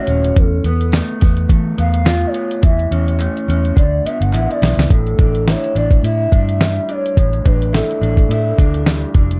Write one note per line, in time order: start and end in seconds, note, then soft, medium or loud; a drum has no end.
0.00 1.62 E3 medium
0.00 0.69 A3 medium
0.00 0.43 F#4 medium
0.00 0.39 C#5 loud
0.07 0.31 D#1 medium
0.07 0.65 C#4 medium
0.07 closed hi-hat medium
0.24 closed hi-hat medium
0.36 0.59 E2 loud
0.36 0.94 A4 medium
0.36 kick loud
0.36 closed hi-hat loud
0.64 1.00 E2 medium
0.64 1.20 B3 medium
0.64 closed hi-hat medium
0.81 closed hi-hat medium
0.93 1.49 A3 medium
0.93 snare loud
0.93 clap medium
0.93 closed hi-hat medium
1.21 1.45 E2 loud
1.21 1.77 B3 medium
1.21 kick medium
1.21 snare soft
1.21 closed hi-hat medium
1.37 closed hi-hat soft
1.49 1.72 E3 medium
1.49 3.19 A3 medium
1.49 kick medium
1.49 closed hi-hat medium
1.78 2.24 E2 medium
1.78 2.33 B3 medium
1.78 2.29 F5 loud
1.78 closed hi-hat medium
1.94 closed hi-hat medium
2.05 2.69 F4 medium
2.05 snare loud
2.05 clap medium
2.05 closed hi-hat medium
2.27 2.64 C#5 loud
2.34 2.70 B3 medium
2.34 closed hi-hat medium
2.51 closed hi-hat medium
2.63 2.86 E2 loud
2.63 3.76 E3 medium
2.63 3.17 E5 medium
2.63 kick loud
2.63 closed hi-hat loud
2.79 closed hi-hat soft
2.91 3.27 E2 medium
2.91 3.47 C#4 medium
2.91 closed hi-hat medium
3.08 closed hi-hat medium
3.20 4.09 A3 medium
3.20 clap medium
3.20 closed hi-hat medium
3.37 closed hi-hat soft
3.48 3.71 E2 loud
3.48 3.83 C#4 medium
3.48 closed hi-hat medium
3.65 closed hi-hat soft
3.76 3.99 D2 medium
3.76 5.51 D3 medium
3.76 4.07 D5 medium
3.76 kick medium
3.76 closed hi-hat medium
4.05 4.61 B3 medium
4.05 4.23 E5 loud
4.05 muted fingered electric bass stroke soft
4.05 closed hi-hat medium
4.21 4.31 G1 medium
4.21 4.52 F#5 medium
4.21 closed hi-hat medium
4.33 4.46 A1 medium
4.33 5.23 E4 medium
4.33 clap medium
4.33 closed hi-hat medium
4.50 4.91 D5 medium
4.50 closed hi-hat soft
4.62 4.74 B1 medium
4.62 4.96 B3 medium
4.62 snare loud
4.62 open hi-hat soft
4.77 4.87 C#2 medium
4.77 snare medium
4.77 closed hi-hat medium
4.90 5.13 A1 loud
4.90 7.16 A2 medium
4.90 5.51 A4 loud
4.90 kick loud
4.90 closed hi-hat loud
5.07 closed hi-hat soft
5.19 5.54 A1 medium
5.19 5.74 D4 medium
5.19 kick loud
5.19 closed hi-hat medium
5.35 closed hi-hat medium
5.48 6.04 E4 medium
5.48 5.76 C#5 loud
5.48 snare loud
5.48 closed hi-hat medium
5.64 closed hi-hat soft
5.75 5.98 A1 medium
5.75 6.30 D4 medium
5.75 6.03 D5 loud
5.75 closed hi-hat medium
5.91 kick medium
5.91 closed hi-hat soft
6.03 6.26 A2 medium
6.03 7.73 E4 medium
6.03 6.92 E5 loud
6.03 closed hi-hat medium
6.32 6.77 G2 medium
6.32 6.88 D4 medium
6.32 kick medium
6.32 closed hi-hat medium
6.49 closed hi-hat medium
6.60 8.85 G3 medium
6.60 snare loud
6.60 closed hi-hat medium
6.89 7.44 D4 medium
6.89 7.47 C#5 loud
6.89 closed hi-hat medium
7.06 closed hi-hat soft
7.17 7.40 A1 loud
7.17 9.40 A2 medium
7.17 kick loud
7.17 closed hi-hat loud
7.33 closed hi-hat soft
7.45 7.80 A1 loud
7.45 8.00 D4 medium
7.45 7.73 B4 medium
7.45 kick loud
7.45 closed hi-hat medium
7.62 closed hi-hat medium
7.73 8.30 E4 medium
7.73 9.11 A4 medium
7.73 snare loud
7.73 closed hi-hat medium
7.91 closed hi-hat soft
8.01 8.24 A1 medium
8.01 8.58 D4 medium
8.01 closed hi-hat medium
8.17 kick medium
8.17 closed hi-hat soft
8.29 8.52 A2 medium
8.29 9.40 E4 medium
8.29 closed hi-hat medium
8.59 9.04 D2 medium
8.59 9.14 D4 medium
8.59 kick medium
8.59 closed hi-hat medium
8.74 closed hi-hat medium
8.86 9.40 G3 medium
8.86 snare loud
8.86 closed hi-hat medium
9.14 9.37 F1 medium
9.14 9.40 D4 medium
9.14 kick medium
9.14 closed hi-hat medium
9.31 closed hi-hat medium